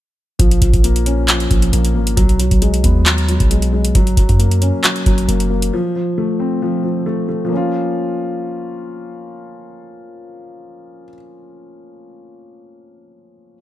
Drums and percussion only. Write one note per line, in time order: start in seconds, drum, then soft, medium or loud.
0.40 kick loud
0.40 closed hi-hat medium
0.51 closed hi-hat medium
0.62 kick medium
0.62 closed hi-hat medium
0.74 kick medium
0.74 closed hi-hat medium
0.84 closed hi-hat medium
0.96 closed hi-hat medium
1.06 closed hi-hat medium
1.28 clap loud
1.28 closed hi-hat medium
1.40 closed hi-hat soft
1.51 kick loud
1.51 closed hi-hat medium
1.62 closed hi-hat medium
1.73 closed hi-hat medium
1.85 closed hi-hat medium
2.07 closed hi-hat medium
2.17 kick loud
2.17 closed hi-hat medium
2.29 closed hi-hat medium
2.40 closed hi-hat medium
2.51 kick medium
2.51 closed hi-hat medium
2.62 closed hi-hat medium
2.74 closed hi-hat medium
2.84 kick medium
2.84 closed hi-hat medium
3.06 clap loud
3.06 closed hi-hat medium
3.18 closed hi-hat medium
3.28 closed hi-hat medium
3.40 kick loud
3.40 closed hi-hat medium
3.51 closed hi-hat medium
3.62 closed hi-hat medium
3.85 closed hi-hat medium
3.95 kick loud
3.95 closed hi-hat medium
4.07 closed hi-hat medium
4.17 kick medium
4.17 closed hi-hat medium
4.29 kick medium
4.29 closed hi-hat medium
4.40 closed hi-hat medium
4.51 closed hi-hat medium
4.62 closed hi-hat medium
4.84 clap loud
4.84 closed hi-hat medium
4.96 closed hi-hat soft
5.06 kick medium
5.06 closed hi-hat medium
5.18 closed hi-hat medium
5.29 closed hi-hat medium
5.40 closed hi-hat medium
5.62 closed hi-hat medium